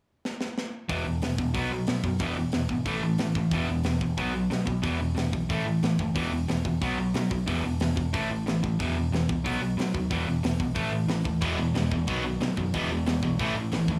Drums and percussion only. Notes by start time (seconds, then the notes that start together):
0.25 snare
0.41 snare
0.58 snare
0.89 kick, open hi-hat
1.22 snare, open hi-hat
1.38 kick
1.54 kick, open hi-hat
1.87 snare, open hi-hat
2.04 kick
2.19 kick, open hi-hat
2.52 snare, open hi-hat
2.69 kick
2.86 kick, open hi-hat
3.18 snare, open hi-hat
3.35 kick
3.51 kick, open hi-hat
3.84 snare, open hi-hat
4.01 kick
4.18 kick, open hi-hat
4.51 snare, open hi-hat
4.67 kick
4.83 kick, open hi-hat
5.17 snare, open hi-hat
5.33 kick
5.50 kick, open hi-hat
5.83 snare, open hi-hat
5.99 kick
6.16 kick, open hi-hat
6.49 snare, open hi-hat
6.65 kick
6.82 kick, open hi-hat
7.14 snare, open hi-hat
7.31 kick
7.47 kick, open hi-hat
7.80 snare, open hi-hat
7.97 kick
8.14 kick, open hi-hat
8.47 snare, open hi-hat
8.64 kick
8.80 kick, open hi-hat
9.13 snare, open hi-hat
9.29 kick
9.46 kick, open hi-hat
9.79 snare, open hi-hat
9.95 kick
10.11 kick, open hi-hat
10.44 snare, open hi-hat
10.60 kick
10.75 kick, open hi-hat
11.08 snare, open hi-hat
11.25 kick
11.41 kick, open hi-hat
11.75 snare, open hi-hat
11.92 kick
12.07 kick, open hi-hat
12.41 snare, open hi-hat
12.57 kick
12.74 kick, open hi-hat
13.06 snare, open hi-hat
13.23 kick
13.39 kick, open hi-hat
13.72 snare, open hi-hat
13.88 kick